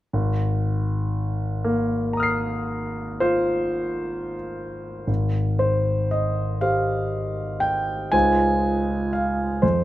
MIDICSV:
0, 0, Header, 1, 2, 480
1, 0, Start_track
1, 0, Key_signature, -4, "major"
1, 0, Tempo, 1001669
1, 63, Time_signature, 9, 3, 24, 8
1, 1021, Tempo, 1077199
1, 1501, Tempo, 1271186
1, 1981, Tempo, 1132075
1, 2461, Tempo, 1003344
1, 4485, End_track
2, 0, Start_track
2, 0, Title_t, "Grand piano"
2, 0, Program_c, 0, 0
2, 64, Note_on_c, 0, 32, 41
2, 147, Control_c, 0, 64, 127
2, 788, Note_on_c, 0, 58, 38
2, 1022, Note_on_c, 0, 82, 30
2, 1040, Note_on_c, 0, 87, 29
2, 1051, Note_on_c, 0, 89, 29
2, 1064, Note_on_c, 0, 96, 31
2, 1499, Note_on_c, 0, 72, 51
2, 1501, Note_on_c, 0, 65, 46
2, 1931, Note_off_c, 0, 58, 0
2, 2219, Note_off_c, 0, 72, 0
2, 2220, Note_off_c, 0, 32, 0
2, 2220, Note_off_c, 0, 65, 0
2, 2220, Note_off_c, 0, 82, 0
2, 2229, Note_off_c, 0, 87, 0
2, 2233, Note_on_c, 0, 32, 39
2, 2234, Note_off_c, 0, 89, 0
2, 2240, Note_off_c, 0, 96, 0
2, 2245, Control_c, 0, 64, 0
2, 2316, Control_c, 0, 64, 127
2, 2452, Note_on_c, 0, 72, 57
2, 2700, Note_on_c, 0, 75, 57
2, 2705, Note_off_c, 0, 72, 0
2, 2940, Note_on_c, 0, 77, 67
2, 2943, Note_on_c, 0, 67, 35
2, 2945, Note_off_c, 0, 75, 0
2, 2945, Note_on_c, 0, 72, 34
2, 3414, Note_on_c, 0, 79, 66
2, 3420, Note_off_c, 0, 77, 0
2, 3642, Note_off_c, 0, 67, 0
2, 3644, Note_off_c, 0, 32, 0
2, 3644, Note_off_c, 0, 72, 0
2, 3659, Note_on_c, 0, 80, 76
2, 3660, Note_off_c, 0, 79, 0
2, 3661, Note_on_c, 0, 65, 37
2, 3663, Note_on_c, 0, 56, 33
2, 3663, Note_on_c, 0, 63, 34
2, 3666, Note_on_c, 0, 37, 44
2, 3667, Note_on_c, 0, 72, 34
2, 3674, Control_c, 0, 64, 0
2, 3745, Control_c, 0, 64, 127
2, 4141, Note_off_c, 0, 80, 0
2, 4144, Note_on_c, 0, 77, 57
2, 4362, Note_off_c, 0, 56, 0
2, 4362, Note_off_c, 0, 63, 0
2, 4364, Note_off_c, 0, 37, 0
2, 4365, Note_off_c, 0, 65, 0
2, 4365, Note_off_c, 0, 72, 0
2, 4379, Note_on_c, 0, 72, 56
2, 4382, Note_off_c, 0, 77, 0
2, 4384, Note_on_c, 0, 41, 39
2, 4389, Control_c, 0, 64, 0
2, 4480, Control_c, 0, 64, 127
2, 4485, Note_off_c, 0, 41, 0
2, 4485, Note_off_c, 0, 72, 0
2, 4485, End_track
0, 0, End_of_file